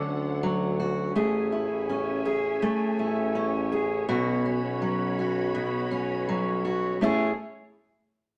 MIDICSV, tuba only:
0, 0, Header, 1, 2, 480
1, 0, Start_track
1, 0, Key_signature, 3, "major"
1, 0, Tempo, 730816
1, 766, Time_signature, 4, 2, 24, 8
1, 5503, End_track
2, 0, Start_track
2, 0, Title_t, "Tuba"
2, 0, Program_c, 0, 58
2, 43, Note_on_c, 0, 38, 94
2, 738, Note_off_c, 0, 38, 0
2, 761, Note_on_c, 0, 33, 99
2, 1098, Note_off_c, 0, 33, 0
2, 1123, Note_on_c, 0, 33, 90
2, 1761, Note_off_c, 0, 33, 0
2, 1963, Note_on_c, 0, 33, 104
2, 2659, Note_off_c, 0, 33, 0
2, 2682, Note_on_c, 0, 35, 105
2, 3018, Note_off_c, 0, 35, 0
2, 3042, Note_on_c, 0, 35, 97
2, 3858, Note_off_c, 0, 35, 0
2, 3886, Note_on_c, 0, 35, 91
2, 4580, Note_off_c, 0, 35, 0
2, 4605, Note_on_c, 0, 33, 96
2, 4829, Note_off_c, 0, 33, 0
2, 5503, End_track
0, 0, End_of_file